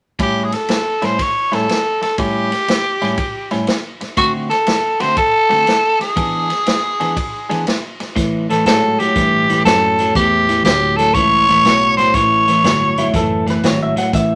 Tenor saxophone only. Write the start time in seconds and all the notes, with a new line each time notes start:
0.22 G4
0.44 G#4
0.55 A4
1.04 C5
1.22 C#5
1.54 A4
2.02 A4
2.19 G4
4.17 F#4
4.50 A4
5.01 C5
5.18 A4
6.01 G#4
8.50 A4
8.66 A4
8.99 G4
9.65 A4
10.16 G4
10.65 G4
10.97 A4
11.13 C#5
11.97 C5
12.14 C#5